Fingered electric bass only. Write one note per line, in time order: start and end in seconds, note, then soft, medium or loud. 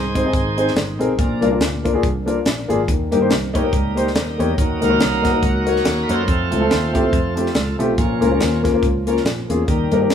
0.00 0.26 C2 medium
0.33 0.69 G#1 medium
0.76 0.99 G1 medium
0.99 1.15 B1 medium
1.19 1.39 A#1 loud
1.42 1.60 C2 medium
1.60 1.96 D2 medium
2.03 2.39 C2 medium
2.45 2.66 A#1 medium
2.70 2.86 G#1 medium
2.89 3.09 D#2 loud
3.13 3.28 G2 medium
3.31 3.67 C2 medium
3.73 4.15 C#2 medium
4.15 4.36 D#2 medium
4.39 4.55 E2 medium
4.58 4.79 D#2 medium
4.83 4.98 C#2 medium
5.01 5.37 C2 medium
5.43 5.79 C#2 medium
5.85 6.06 D#2 medium
6.09 6.25 F#2 medium
6.28 6.49 F2 loud
6.53 6.68 C#2 medium
6.71 7.07 D#2 medium
7.13 7.49 F2 medium
7.55 7.76 C#2 medium
7.79 7.95 B1 medium
7.98 8.19 A#1 medium
8.22 8.38 C#2 medium
8.40 8.76 D#2 medium
8.83 9.19 C#2 medium
9.25 9.46 A#1 medium
9.50 9.65 E2 medium
9.68 9.88 D#2 medium
9.92 10.11 G2 medium
10.11 10.14 F2 medium